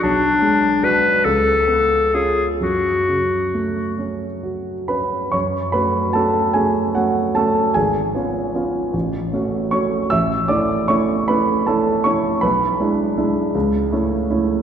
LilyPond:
<<
  \new Staff \with { instrumentName = "Clarinet" } { \time 6/8 \key fis \minor \tempo 4. = 50 d'4 b'8 a'4 gis'8 | fis'4. r4. | r2. | r2. |
r2. | r2. | }
  \new Staff \with { instrumentName = "Grand piano" } { \time 6/8 \key fis \minor << { r2. | r2 r8 <b' b''>8 | <cis'' cis'''>8 <b' b''>8 <a' a''>8 <gis' gis''>8 <fis' fis''>8 <a' a''>8 | <gis' gis''>2 r8 <cis'' cis'''>8 |
<e'' e'''>8 <d'' d'''>8 <cis'' cis'''>8 <b' b''>8 <a' a''>8 <cis'' cis'''>8 | <b' b''>2 r4 | } \\ { b,,8 gis8 <d' fis'>8 cis,8 b8 <cis' eis'>8 | fis,8 cis8 a8 cis'8 fis'8 cis'8 | fis,8 <a cis' fis'>8 <a cis' fis'>8 <a cis' fis'>8 <a cis'>8 <a cis' fis'>8 | gis,,8 <b cis' eis'>8 <b cis' eis'>8 a,,8 <a cis' fis'>8 <a cis' fis'>8 |
a,,8 <a cis' e'>8 <a cis' e'>8 <a cis' e'>8 <a cis' e'>8 <a cis' e'>8 | b,,8 <gis d' e'>8 <gis d' e'>8 cis,8 <a cis' e'>8 <a cis' e'>8 | } >> }
>>